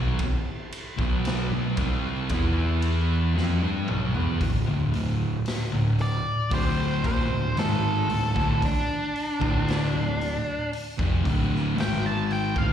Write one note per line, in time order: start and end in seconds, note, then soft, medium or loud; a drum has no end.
0.00 0.18 B1 medium
0.00 0.18 B2 medium
0.00 0.18 F#3 loud
0.19 kick loud
0.19 ride loud
0.72 ride medium
0.97 1.48 B1 medium
0.97 1.49 B2 loud
0.97 1.49 F#3 loud
0.97 1.50 B3 loud
0.97 kick loud
1.25 snare loud
1.25 ride loud
1.51 1.76 B1 medium
1.51 1.76 B2 medium
1.51 1.77 F#3 medium
1.76 2.27 C2 medium
1.76 2.28 C3 medium
1.76 2.29 G3 medium
1.76 2.29 C4 loud
1.76 kick loud
1.76 ride medium
2.29 3.32 E2 loud
2.29 3.34 E3 medium
2.29 3.34 B3 medium
2.29 3.35 E4 medium
2.29 kick loud
2.29 ride loud
2.82 ride medium
3.34 3.61 F2 loud
3.34 3.60 F3 medium
3.34 3.60 C4 loud
3.34 snare medium
3.61 3.87 G2 medium
3.61 3.87 G3 medium
3.61 3.87 D4 loud
3.87 4.14 B1 medium
3.87 4.13 B2 medium
3.87 4.12 F#3 loud
3.87 mid tom medium
4.13 4.40 E2 medium
4.13 4.39 E3 medium
4.13 4.39 B3 loud
4.13 floor tom medium
4.40 4.65 D1 medium
4.40 4.65 D2 medium
4.40 4.66 A2 medium
4.40 kick medium
4.40 open hi-hat medium
4.66 4.93 D1 medium
4.66 4.91 D2 medium
4.66 4.92 A2 medium
4.92 5.35 D2 medium
4.92 5.36 A2 medium
4.92 open hi-hat medium
4.96 5.44 D1 medium
5.46 snare loud
5.46 open hi-hat medium
5.72 6.23 D1 medium
5.72 6.15 D2 medium
5.72 6.15 A2 medium
5.99 6.52 D5 medium
5.99 open hi-hat medium
6.50 7.01 D1 loud
6.50 7.02 D2 medium
6.50 7.02 A2 loud
6.50 7.03 D3 loud
6.50 kick loud
6.50 open hi-hat medium
6.54 7.04 C5 medium
7.03 7.29 D#1 medium
7.03 7.29 D#2 medium
7.03 7.29 A#2 loud
7.03 7.57 C5 medium
7.03 kick loud
7.03 open hi-hat medium
7.07 7.31 D#2 loud
7.30 7.56 D1 medium
7.30 7.55 D2 medium
7.30 7.56 A2 medium
7.55 8.07 G#1 medium
7.55 8.07 G#2 medium
7.55 8.08 D#3 loud
7.55 8.08 G#3 loud
7.55 8.60 A4 loud
7.55 open hi-hat medium
7.59 snare loud
8.08 8.34 D1 medium
8.08 8.33 D2 medium
8.08 8.34 A2 medium
8.08 open hi-hat medium
8.35 8.61 D1 medium
8.35 8.60 D2 medium
8.35 8.61 A2 loud
8.35 kick loud
8.35 snare soft
8.62 10.70 D4 loud
8.62 kick loud
8.62 open hi-hat medium
9.15 open hi-hat medium
9.40 9.90 D1 medium
9.40 9.91 D2 loud
9.40 9.92 A2 loud
9.40 9.92 D3 loud
9.40 kick loud
9.68 snare loud
9.68 open hi-hat medium
9.93 10.42 D1 medium
9.93 10.35 D2 medium
9.93 10.36 A2 medium
10.21 open hi-hat medium
10.73 open hi-hat medium
10.99 11.23 F1 medium
10.99 11.24 F2 medium
10.99 11.24 C3 loud
10.99 kick loud
11.25 11.74 D1 medium
11.25 11.75 D2 loud
11.25 11.76 A2 loud
11.25 11.76 D3 loud
11.25 kick loud
11.25 open hi-hat medium
11.55 snare soft
11.76 12.51 G#1 medium
11.76 12.54 G#2 loud
11.76 12.54 D#3 medium
11.76 12.54 G#3 loud
11.76 open hi-hat medium
11.80 12.04 G5 loud
11.80 snare loud
12.06 12.30 A5 medium
12.31 12.57 G5 medium
12.31 open hi-hat medium
12.55 12.73 D1 medium
12.55 12.73 D2 medium
12.55 12.73 A2 loud
12.55 12.73 F5 medium
12.55 kick loud